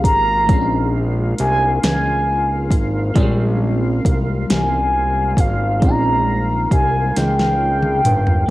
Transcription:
Already playing: G#3 A#3 C4 C#4 F4 G#4 A#4 F5
0.04 G#1 A#5, kick, closed hi-hat
0.46 A#1 G#3 C4, kick, closed hi-hat
0.52 C#4 D4
0.61 D#4
1.38 C2 G#5, closed hi-hat
1.83 C#2 G#5, snare, closed hi-hat
2.71 G#1, kick, closed hi-hat
3.14 A#1 G#3 C4, kick, closed hi-hat
3.20 G3 C#4
4.05 C2, kick, closed hi-hat
4.49 C2 G#5, snare, closed hi-hat
5.37 G#1 F5, kick, closed hi-hat
5.80 A#1 G#3 C4, kick, closed hi-hat
5.85 C#4 D#4 A#5
6.71 C2 G#5, kick, closed hi-hat
7.16 C#2 G5, snare, closed hi-hat
7.39 snare
7.82 mid tom
8.05 G1, closed hi-hat, mid tom
8.27 floor tom
8.46 A#3

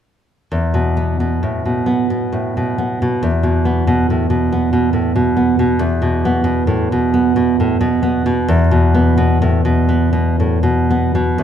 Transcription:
0.52 E2
0.74 B2
0.97 B3
1.20 B2
1.43 A2
1.65 B2
1.86 B3
2.10 B2
2.32 A2
2.57 B2
2.78 B3
3.02 B2
3.23 E2
3.43 B2
3.65 B3
3.87 B2
4.10 A2
4.30 B2
4.52 B3
4.73 B2
4.93 A2
5.16 B2
5.37 B3
5.59 B2
5.79 E2
6.02 B2
6.25 B3
6.44 B2
6.67 A2
6.92 B2
7.14 B3
7.36 B2
7.60 A2
7.81 B2
8.03 B3
8.26 B2
8.48 E2
8.71 B2
8.95 B3
9.17 B2
9.42 A2
9.65 B2
9.89 B3
10.13 B2
10.40 A2
10.63 B2
10.91 B3
11.15 B2
11.38 E2

